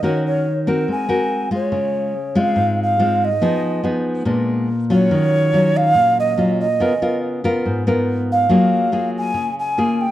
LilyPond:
<<
  \new Staff \with { instrumentName = "Ocarina" } { \time 4/4 \key aes \major \tempo 4 = 142 des''8 des''4 bes'8 aes''4. des''8~ | \key des \major des''4. f''4 f''4 ees''8~ | ees''4 r2 r8 des''8~ | des''4. f''4 ees''4 ees''8~ |
ees''4 r2 r8 f''8~ | f''4. aes''4 aes''4 g''8 | }
  \new Staff \with { instrumentName = "Nylon-string guitar" } { \time 4/4 \key aes \major << { <des' ges' bes'>4 r8 <c' ges' bes'>4 <c' ges' bes'>4 <aes f'>8~ | \key des \major <aes f'>4 r8 <aes c' f'>4. <aes c' f'>8 r8 | <ces' ees' aes'>4 <ces' ees' aes'>4 <aes ces' d'>4 r8 <ges des' f'>8~ | <ges des' f'>4 <ges des' f'>2 <ges des' f'>8 r8 |
<ces' f' bes'>8 <ces' f' bes'>4 <ces' f' bes'>4 <ces' f' bes'>4. | <bes f' aes'>4 <bes f' aes'>4. r8 <bes f' aes'>8 r8 | } \\ { ees2 aes2 | des2 aes,2 | f2 bes,2 | ees2 bes,2 |
des2 aes,2 | ges2 des2 | } >> }
>>